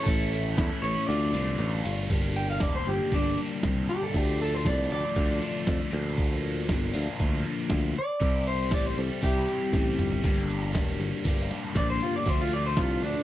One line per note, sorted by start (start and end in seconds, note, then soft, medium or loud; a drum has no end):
0.03 0.54 A1 loud
0.03 0.57 A2 loud
0.03 0.55 E3 medium
0.03 0.33 A3 loud
0.03 0.77 A4 medium
0.03 kick loud
0.07 0.32 C#4 loud
0.07 0.30 E4 loud
0.32 0.56 A3 medium
0.32 0.57 C#4 medium
0.32 0.58 E4 medium
0.32 open hi-hat medium
0.56 0.69 E2 loud
0.56 1.06 E3 medium
0.56 0.85 A3 medium
0.56 0.84 C#4 medium
0.56 0.82 E4 medium
0.56 kick loud
0.56 snare loud
0.56 clap medium
0.82 0.95 A1 medium
0.82 1.07 E3 medium
0.82 1.08 C#4 medium
0.82 1.07 E4 medium
0.82 1.06 C#5 medium
0.82 open hi-hat medium
0.86 1.08 A2 medium
0.86 1.08 A3 medium
1.07 1.32 D2 loud
1.07 1.58 D3 medium
1.07 1.35 A3 medium
1.07 1.33 D4 medium
1.07 1.80 D5 medium
1.11 1.31 F4 loud
1.33 1.57 C2 medium
1.33 1.59 A3 medium
1.33 1.60 D4 medium
1.33 1.60 F4 medium
1.33 clap medium
1.33 open hi-hat medium
1.59 1.82 A1 loud
1.59 2.08 D3 loud
1.59 2.09 A3 loud
1.59 2.10 D4 loud
1.59 2.10 F4 loud
1.59 clap medium
1.84 2.08 G1 medium
1.84 2.10 A3 medium
1.84 2.09 D4 medium
1.84 2.08 F4 medium
1.84 open hi-hat medium
2.09 2.61 G1 medium
2.09 3.10 G2 medium
2.09 3.11 D3 loud
2.09 3.11 G3 medium
2.09 3.11 A#3 medium
2.09 3.14 D4 medium
2.09 3.12 G4 medium
2.09 kick loud
2.09 closed hi-hat loud
2.35 2.48 G5 medium
2.35 closed hi-hat medium
2.50 2.61 F5 medium
2.60 2.85 E1 loud
2.60 2.73 D5 medium
2.60 kick loud
2.60 snare loud
2.60 closed hi-hat medium
2.75 2.87 C5 medium
2.86 2.99 G1 medium
2.86 3.12 G4 medium
2.86 closed hi-hat medium
3.12 3.36 G1 medium
3.12 4.12 G2 medium
3.12 4.12 D3 medium
3.12 4.13 G3 medium
3.12 4.14 A#3 medium
3.12 3.38 D4 medium
3.12 4.16 D4 medium
3.12 4.14 G4 medium
3.12 kick loud
3.12 closed hi-hat medium
3.38 closed hi-hat medium
3.63 3.87 C2 medium
3.63 kick loud
3.63 snare loud
3.63 closed hi-hat medium
3.89 4.01 G4 loud
3.89 closed hi-hat medium
4.03 4.16 A4 medium
4.14 4.67 D2 medium
4.14 5.15 D3 medium
4.14 5.16 F3 medium
4.14 5.15 A3 medium
4.14 5.18 D4 medium
4.14 5.19 F4 loud
4.14 4.40 G4 medium
4.14 kick loud
4.14 closed hi-hat medium
4.40 4.54 A4 medium
4.40 closed hi-hat medium
4.54 4.66 C5 medium
4.65 4.89 C2 loud
4.65 4.91 D5 medium
4.65 kick loud
4.65 snare loud
4.65 closed hi-hat medium
4.78 snare soft
4.90 5.03 D2 medium
4.90 6.40 D5 medium
4.90 closed hi-hat medium
5.15 5.40 D2 medium
5.15 5.90 D3 medium
5.15 5.91 F3 medium
5.15 5.91 A3 medium
5.15 5.92 D4 medium
5.15 kick loud
5.15 closed hi-hat loud
5.19 5.93 F4 medium
5.42 snare soft
5.42 closed hi-hat medium
5.67 5.79 F2 medium
5.67 kick loud
5.67 snare loud
5.67 closed hi-hat medium
5.92 6.71 D2 medium
5.92 6.92 D3 medium
5.92 6.93 F3 loud
5.92 6.93 A#3 medium
5.92 6.94 D4 medium
5.92 6.92 F4 medium
5.92 closed hi-hat medium
6.17 kick loud
6.17 closed hi-hat medium
6.43 closed hi-hat medium
6.69 6.93 G1 loud
6.69 kick loud
6.69 snare loud
6.69 closed hi-hat medium
6.82 snare soft
6.94 7.06 D2 medium
6.94 7.96 D3 medium
6.94 7.95 F3 medium
6.94 7.95 A#3 medium
6.94 7.95 D4 medium
6.94 7.94 F4 medium
6.94 closed hi-hat medium
7.20 7.43 D2 medium
7.20 kick loud
7.20 closed hi-hat medium
7.45 closed hi-hat medium
7.70 7.94 D2 medium
7.70 kick loud
7.70 snare loud
7.70 closed hi-hat medium
7.95 8.46 D5 loud
7.95 closed hi-hat medium
8.20 8.72 C2 medium
8.20 9.21 C3 medium
8.20 9.21 E3 medium
8.20 9.24 G3 medium
8.20 9.22 C4 medium
8.20 9.22 E4 medium
8.20 9.26 G4 loud
8.20 kick loud
8.20 closed hi-hat medium
8.46 8.72 C5 medium
8.46 closed hi-hat medium
8.71 8.95 A1 loud
8.71 8.86 D5 medium
8.71 kick loud
8.71 snare loud
8.71 closed hi-hat medium
8.86 8.98 C5 medium
8.98 9.09 C2 medium
8.98 9.22 A4 medium
8.98 closed hi-hat medium
9.22 9.46 C2 medium
9.22 10.23 C3 medium
9.22 10.23 E3 medium
9.22 10.24 G3 medium
9.22 10.24 C4 medium
9.22 10.24 E4 medium
9.22 10.71 G4 loud
9.22 kick loud
9.22 closed hi-hat loud
9.26 10.25 G4 medium
9.48 closed hi-hat medium
9.73 9.96 A1 medium
9.73 kick loud
9.73 snare medium
9.73 closed hi-hat medium
9.99 10.22 G1 medium
9.99 closed hi-hat medium
9.99 mid tom medium
10.12 floor tom medium
10.23 10.75 G1 medium
10.23 11.24 G2 loud
10.23 11.24 D3 medium
10.23 11.25 G3 loud
10.23 11.25 A#3 loud
10.23 11.28 D4 loud
10.23 11.25 G4 loud
10.23 kick loud
10.23 closed hi-hat loud
10.50 closed hi-hat medium
10.74 10.98 E1 loud
10.74 kick loud
10.74 snare loud
10.74 clap loud
10.74 closed hi-hat medium
11.00 11.12 G1 medium
11.00 closed hi-hat medium
11.25 11.49 G1 medium
11.25 12.25 G2 medium
11.25 12.25 D3 medium
11.25 12.25 G3 medium
11.25 12.27 A#3 medium
11.25 12.28 D4 medium
11.25 kick loud
11.25 closed hi-hat medium
11.29 12.27 G4 medium
11.51 snare soft
11.51 closed hi-hat medium
11.75 11.99 A#1 medium
11.75 11.89 D5 loud
11.75 kick loud
11.75 snare loud
11.75 clap loud
11.75 closed hi-hat medium
11.90 12.02 C5 medium
12.00 12.15 F4 medium
12.00 closed hi-hat medium
12.16 12.29 D5 medium
12.26 12.79 D2 loud
12.26 13.23 D3 medium
12.26 13.23 F3 medium
12.26 13.23 A3 medium
12.26 13.23 D4 medium
12.26 13.23 F4 loud
12.26 12.40 C5 medium
12.26 kick loud
12.26 closed hi-hat medium
12.41 12.53 F4 medium
12.51 12.65 D5 medium
12.51 closed hi-hat medium
12.66 12.78 C5 medium
12.77 13.01 C2 loud
12.77 13.03 F4 medium
12.77 kick loud
12.77 snare loud
12.77 clap loud
12.77 closed hi-hat loud
13.02 13.15 D2 medium
13.02 13.23 D4 loud
13.02 closed hi-hat medium